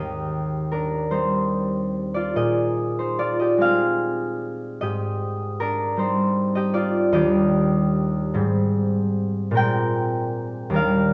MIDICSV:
0, 0, Header, 1, 2, 480
1, 0, Start_track
1, 0, Key_signature, -3, "major"
1, 0, Tempo, 821918
1, 1375, Time_signature, 6, 3, 24, 8
1, 2812, Tempo, 780234
1, 4252, Tempo, 794702
1, 6655, End_track
2, 0, Start_track
2, 0, Title_t, "Harp"
2, 0, Program_c, 0, 46
2, 0, Note_on_c, 0, 39, 56
2, 0, Note_on_c, 0, 58, 45
2, 0, Note_on_c, 0, 60, 40
2, 0, Note_on_c, 0, 67, 55
2, 0, Note_on_c, 0, 75, 68
2, 0, Note_on_c, 0, 77, 78
2, 418, Note_on_c, 0, 70, 68
2, 424, Note_on_c, 0, 62, 50
2, 429, Note_off_c, 0, 77, 0
2, 644, Note_on_c, 0, 55, 40
2, 645, Note_off_c, 0, 60, 0
2, 648, Note_on_c, 0, 72, 78
2, 652, Note_on_c, 0, 60, 44
2, 654, Note_on_c, 0, 63, 55
2, 1252, Note_on_c, 0, 74, 71
2, 1262, Note_on_c, 0, 65, 55
2, 1371, Note_off_c, 0, 75, 0
2, 1375, Note_on_c, 0, 46, 54
2, 1380, Note_on_c, 0, 75, 78
2, 1383, Note_on_c, 0, 68, 56
2, 1395, Note_off_c, 0, 55, 0
2, 1396, Note_off_c, 0, 39, 0
2, 1399, Note_off_c, 0, 67, 0
2, 1402, Note_off_c, 0, 62, 0
2, 1458, Note_off_c, 0, 74, 0
2, 1472, Note_off_c, 0, 58, 0
2, 1738, Note_off_c, 0, 72, 0
2, 1744, Note_off_c, 0, 63, 0
2, 1745, Note_on_c, 0, 72, 59
2, 1751, Note_on_c, 0, 63, 47
2, 1856, Note_off_c, 0, 65, 0
2, 1861, Note_on_c, 0, 65, 55
2, 1862, Note_on_c, 0, 74, 75
2, 1946, Note_off_c, 0, 72, 0
2, 1975, Note_off_c, 0, 75, 0
2, 1982, Note_on_c, 0, 75, 75
2, 1992, Note_on_c, 0, 67, 52
2, 2064, Note_off_c, 0, 74, 0
2, 2090, Note_on_c, 0, 56, 43
2, 2096, Note_off_c, 0, 60, 0
2, 2101, Note_off_c, 0, 68, 0
2, 2103, Note_on_c, 0, 60, 49
2, 2108, Note_on_c, 0, 68, 64
2, 2112, Note_on_c, 0, 77, 83
2, 2185, Note_off_c, 0, 75, 0
2, 2696, Note_off_c, 0, 70, 0
2, 2809, Note_on_c, 0, 75, 78
2, 2812, Note_off_c, 0, 67, 0
2, 2814, Note_on_c, 0, 44, 55
2, 2820, Note_on_c, 0, 67, 62
2, 2833, Note_off_c, 0, 46, 0
2, 2833, Note_off_c, 0, 77, 0
2, 2835, Note_off_c, 0, 65, 0
2, 3295, Note_on_c, 0, 70, 80
2, 3300, Note_on_c, 0, 62, 57
2, 3520, Note_off_c, 0, 60, 0
2, 3520, Note_on_c, 0, 55, 47
2, 3527, Note_off_c, 0, 63, 0
2, 3527, Note_on_c, 0, 60, 52
2, 3534, Note_on_c, 0, 63, 56
2, 3534, Note_on_c, 0, 72, 70
2, 3698, Note_off_c, 0, 70, 0
2, 3873, Note_off_c, 0, 75, 0
2, 3881, Note_on_c, 0, 75, 75
2, 3882, Note_off_c, 0, 67, 0
2, 3890, Note_on_c, 0, 67, 58
2, 3995, Note_on_c, 0, 74, 83
2, 4000, Note_on_c, 0, 65, 61
2, 4090, Note_off_c, 0, 75, 0
2, 4230, Note_off_c, 0, 55, 0
2, 4231, Note_off_c, 0, 62, 0
2, 4233, Note_on_c, 0, 39, 64
2, 4235, Note_on_c, 0, 55, 52
2, 4235, Note_on_c, 0, 75, 80
2, 4237, Note_off_c, 0, 67, 0
2, 4241, Note_on_c, 0, 62, 51
2, 4244, Note_on_c, 0, 67, 61
2, 4267, Note_off_c, 0, 60, 0
2, 4267, Note_off_c, 0, 72, 0
2, 4272, Note_off_c, 0, 44, 0
2, 4272, Note_off_c, 0, 56, 0
2, 4276, Note_off_c, 0, 68, 0
2, 4410, Note_off_c, 0, 74, 0
2, 4963, Note_off_c, 0, 55, 0
2, 4965, Note_on_c, 0, 60, 50
2, 4970, Note_on_c, 0, 44, 71
2, 4972, Note_on_c, 0, 55, 52
2, 4987, Note_off_c, 0, 39, 0
2, 4989, Note_off_c, 0, 62, 0
2, 4990, Note_off_c, 0, 65, 0
2, 5674, Note_on_c, 0, 46, 69
2, 5685, Note_off_c, 0, 60, 0
2, 5688, Note_on_c, 0, 56, 48
2, 5692, Note_on_c, 0, 60, 55
2, 5698, Note_on_c, 0, 70, 72
2, 5704, Note_off_c, 0, 75, 0
2, 5709, Note_on_c, 0, 79, 101
2, 5711, Note_off_c, 0, 44, 0
2, 5713, Note_off_c, 0, 63, 0
2, 6391, Note_on_c, 0, 39, 71
2, 6399, Note_off_c, 0, 55, 0
2, 6401, Note_on_c, 0, 55, 54
2, 6409, Note_off_c, 0, 70, 0
2, 6416, Note_on_c, 0, 62, 55
2, 6416, Note_on_c, 0, 70, 66
2, 6426, Note_off_c, 0, 56, 0
2, 6427, Note_off_c, 0, 46, 0
2, 6427, Note_on_c, 0, 77, 92
2, 6428, Note_off_c, 0, 60, 0
2, 6600, Note_off_c, 0, 67, 0
2, 6655, Note_off_c, 0, 39, 0
2, 6655, Note_off_c, 0, 55, 0
2, 6655, Note_off_c, 0, 62, 0
2, 6655, Note_off_c, 0, 70, 0
2, 6655, Note_off_c, 0, 77, 0
2, 6655, Note_off_c, 0, 79, 0
2, 6655, End_track
0, 0, End_of_file